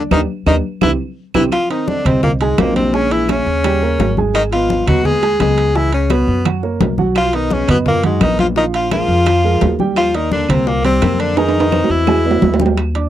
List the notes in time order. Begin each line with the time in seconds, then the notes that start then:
0.11 D#2 D#3 D4 D#4 G4, low bongo, high conga, high timbale, claves
0.46 D#2 D#3 D4 D#4 G4, low bongo, high conga, high timbale, claves
0.81 C2 E3 C4 E4 G4, low bongo, high conga, high timbale, claves
1.34 C2 E3 C4 E4 G4, low bongo, high conga, high timbale, claves
1.52 F3 F4, high bongo, high conga, high timbale, claves
1.70 D#3 C4 D#4 C5 D#5, high bongo, high conga, high timbale
1.87 D3 D4, high bongo, high conga
2.05 C2 C3 C4 C5 D#5, high bongo, high conga, low conga, high timbale, claves
2.22 A#2 A#3, high bongo, high conga, low conga
2.40 G#2 G#3 G#4 G#5, high conga, high timbale
2.58 A#1 A#2 A#3 C4 C5 D#5, high bongo, low bongo, high conga, high timbale, low timbale, claves
2.76 C3 C4, high bongo, high conga, high timbale
2.94 C#3 G#3 C#4 G#4 G#5, high bongo, high conga
3.11 E3 E4, high conga, high timbale
3.29 C#3 C#4 C#5 E5, high bongo, high conga, high timbale, claves
3.46 D#2, high bongo, high conga
3.64 G3 G4 G5, high bongo, high conga, high timbale, claves
3.82 A#3 A#4 C#5, high bongo, high conga
3.99 G#1, high bongo, low bongo, high conga, high timbale, low timbale
4.17 G#3 G#4 G#5, high bongo, high conga
4.34 D#3 D#4, high bongo, high conga, high timbale, claves
4.51 F3 B3 F4 B4 D#5, high bongo, high conga, high timbale
4.70 high bongo, high conga
4.86 D#2 F#3 B3 F#4 B4 D#5, high bongo, high conga, low conga, high timbale, claves
5.04 G#3 G#4, high bongo, high conga, low conga
5.22 G#3 G#4 G#5, high conga, high timbale
5.40 C#2 G#3 B3 G#4 B4 D#5, high bongo, low bongo, high conga, high timbale, claves
5.58 high bongo, high timbale
5.75 E3 G#3 E4 G#4 G#5, high bongo, high conga
5.92 C#3 C#4, high conga, high timbale
6.10 B2 B3 B4 C#5, high bongo, high conga, high timbale, claves
6.28 F#2, high bongo, high conga
6.45 F#3 F#4 F#5, high bongo, high conga, high timbale, claves
6.63 A#3 A#4 C#5, high bongo, high conga
6.80 B1, high bongo, low bongo, high conga, high timbale, low timbale
6.98 F#3 F#4 F#5, high bongo, high conga
7.15 F3 F4, high bongo, high conga, high timbale, claves
7.33 D#3 B3 D#4 B4 D#5, high bongo, high conga, high timbale
7.50 C#3 C#4, high bongo, high conga
7.68 F#2 B2 B3 B4 D#5, high bongo, high conga, low conga, high timbale, claves
7.86 A#2 A#3, high bongo, high conga, low conga
8.03 G#2 F#3 G#3 F#4 F#5, high conga, high timbale
8.21 A#1 D#3 B3 D#4 B4 D#5, high bongo, low bongo, high conga, high timbale, claves
8.39 F3 F4, high bongo, high conga, high timbale
8.56 D#3 F3 D#4 F4 F5, high bongo, high conga
8.74 F3 F4, high conga, high timbale
8.91 F3 G#3 F4 G#4 A#4, high bongo, high conga, high timbale, claves
9.08 F2, high bongo, high conga
9.26 F3 F4 F5, high bongo, high conga, high timbale, claves
9.44 G#3 G#4 A#4, high bongo, high conga
9.61 D#2, high bongo, low bongo, high conga, high timbale, low timbale
9.79 G3 G4 G5, high bongo, high conga
9.96 F3 F4, high bongo, high conga, high timbale, claves
10.14 D#3 A#3 D#4 A#4 D5, high bongo, high conga, high timbale
10.31 D3 D4, high bongo, high conga
10.49 C2 C3 A#3 C4 A#4 C5, high bongo, high conga, low conga, high timbale, claves
10.66 A#2 A#3, high bongo, high conga
10.84 C3 G3 C4 G4 G5, high conga, high timbale
11.02 F2 A#3 A#4 C5, high bongo, low bongo, high conga, high timbale, claves
11.19 D3 D4, high bongo, high timbale
11.37 D#3 G#3 D#4 G#4 G#5, high bongo, high timbale
11.49 high timbale
11.55 high conga
11.60 high timbale
11.72 C4 C5 D#5, high bongo, high conga, high timbale, claves
11.84 low timbale
11.90 E2 E3 E4, high conga
12.07 G#3 G#4 G#5, low bongo, high conga, low timbale, claves
12.24 B3 B4 D5, high conga
12.31 low timbale
12.42 D#2, low bongo, high conga, low timbale
12.54 low timbale
12.60 G3 G4 G5, low bongo, high conga
12.66 low timbale
12.77 high bongo, high conga, high timbale, claves
12.95 D4 D5 D6, high bongo, high conga, high timbale